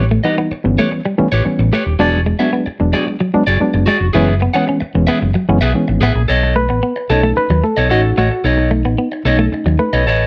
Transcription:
Already playing: A1
0.11 A3 B3 C#4, muted clean electric guitar stroke
0.24 E3 G3 B3 D#4 G4 B4 D#5
0.38 B3, muted clean electric guitar stroke
0.51 muted fingered electric bass stroke, muted clean electric guitar stroke
0.64 G1 E3 G3 B3 C#4, muted clean electric guitar stroke
0.78 A3 G4 B4 C#5
0.91 muted clean electric guitar stroke
1.05 G3, muted clean electric guitar stroke
1.18 E3 G3 A3 B3 C#4, muted fingered electric bass stroke
1.32 A1 G4 B4 C#5
1.45 E3 G3 B3 C#4, muted clean electric guitar stroke, muted fingered electric bass stroke
1.59 A1, muted clean electric guitar stroke
1.73 A3 G4 B4 C#5
1.85 D#1 B3 C#4, muted clean electric guitar stroke
1.99 E1 F#3 G#3 B3 D4 F#4 G#4 D5
2.13 muted clean electric guitar stroke
2.26 G#3 B3 D4, muted clean electric guitar stroke
2.39 F#3 G#3 B3 D4 F#4 G#4 E5
2.53 B3, muted clean electric guitar stroke
2.66 muted clean electric guitar stroke, muted fingered electric bass stroke
2.80 E1 F#3 G#3 B3 D4, muted clean electric guitar stroke
2.93 G#3 F#4 G#4 D5
3.07 muted clean electric guitar stroke
3.20 F#3, muted clean electric guitar stroke
3.34 F#3 G#3 B3 D4, muted fingered electric bass stroke
3.47 F#1 F#4 G#4 D5
3.60 F#3 G#3 B3 D4, muted clean electric guitar stroke
3.74 F#1, muted clean electric guitar stroke
3.86 G#3 F#4 G#4 D5
4.00 F1 B3 D4, muted clean electric guitar stroke
4.13 F#1 E3 G#3 B3 C#4 G#4 B4 E5
4.28 muted clean electric guitar stroke
4.40 B3 C#4, muted clean electric guitar stroke
4.54 E3 G#3 B3 C#4 G#4 B4 F#5
4.66 C#4, muted clean electric guitar stroke
4.80 muted clean electric guitar stroke, muted fingered electric bass stroke
4.95 E1 E3 G#3 B3 C#4, muted clean electric guitar stroke
5.07 B3 G#4 B4 E5
5.21 F#1, muted clean electric guitar stroke
5.34 F#3, muted clean electric guitar stroke
5.48 F#1 E3 G#3 B3 C#4
5.61 B1 G#4 B4 E5
5.74 E3 G#3 B3 C#4, muted clean electric guitar stroke
5.88 G#1, muted clean electric guitar stroke
6.01 A1 B3 G#4 B4 E5
6.15 A#1 B3 C#4, muted clean electric guitar stroke
6.28 B1 A4 C#5 D#5
6.43 muted clean electric guitar stroke
6.56 A3 B4
6.69 A1 B3, muted clean electric guitar stroke
6.83 B3
6.96 muted clean electric guitar stroke
7.09 B1 A3 C#4 D#4 A4 C#5 D#5, muted clean electric guitar stroke
7.23 A3, muted clean electric guitar stroke
7.37 B4, muted clean electric guitar stroke, muted fingered electric bass stroke
7.50 D#2 F#3, muted clean electric guitar stroke
7.64 A3 A4
7.77 B1 A4 C#5 D#5
7.89 A1 A3 C#4 D#4 F#4 A4 C#5 D#5
8.04 muted clean electric guitar stroke
8.17 A1 A3 F#4 A4 C#5 D#5
8.31 muted clean electric guitar stroke
8.44 B1 D#4 A4 C#5 D#5
8.58 muted clean electric guitar stroke
8.71 A3
8.85 A1 B3, muted clean electric guitar stroke
8.98 B3
9.12 muted clean electric guitar stroke
9.25 B1 A3 C#4 D#4 A4 C#5 D#5, muted clean electric guitar stroke
9.39 A3, muted clean electric guitar stroke
9.52 muted fingered electric bass stroke, muted clean electric guitar stroke
9.66 D#2 F#3, muted clean electric guitar stroke
9.79 A3 B4
9.93 B1 A4 C#5 D#5
10.06 A1 A4 C#5 D#5

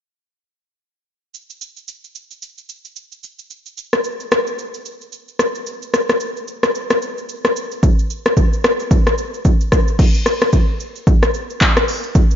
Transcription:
1.34 shaker
1.50 shaker
1.61 shaker
1.77 shaker
1.88 shaker
2.04 shaker
2.15 shaker
2.31 shaker
2.42 shaker
2.58 shaker
2.69 shaker
2.85 shaker
2.96 shaker
3.12 shaker
3.23 shaker
3.39 shaker
3.50 shaker
3.66 shaker
3.77 shaker
3.93 cross-stick, shaker
4.04 shaker
4.20 shaker
4.32 cross-stick, shaker
4.47 shaker
4.59 shaker
4.74 shaker
4.86 shaker
5.01 shaker
5.12 shaker
5.28 shaker
5.39 cross-stick, shaker
5.55 shaker
5.67 shaker
5.82 shaker
5.94 cross-stick, shaker
6.09 cross-stick, shaker
6.20 shaker
6.37 shaker
6.48 shaker
6.63 cross-stick, shaker
6.75 shaker
6.90 cross-stick, shaker
7.02 shaker
7.18 shaker
7.29 shaker
7.45 cross-stick, shaker
7.56 shaker
7.72 shaker
7.83 kick, shaker
7.99 shaker
8.10 shaker
8.26 cross-stick, shaker
8.37 kick, shaker
8.53 shaker
8.64 cross-stick, shaker
8.80 shaker
8.91 kick, shaker
9.07 cross-stick, shaker
9.18 shaker
9.34 shaker
9.45 kick, shaker
9.61 shaker
9.72 kick, cross-stick, shaker
9.88 shaker
9.99 kick, crash, shaker
10.15 shaker
10.26 cross-stick, shaker
10.41 cross-stick, shaker
10.53 kick, shaker
10.80 shaker
10.96 shaker
11.07 kick, shaker
11.23 cross-stick, shaker
11.34 shaker
11.50 shaker
11.61 kick, clap, shaker
11.77 cross-stick, shaker
11.88 open hi-hat, shaker
12.04 shaker
12.15 kick, shaker
12.31 shaker

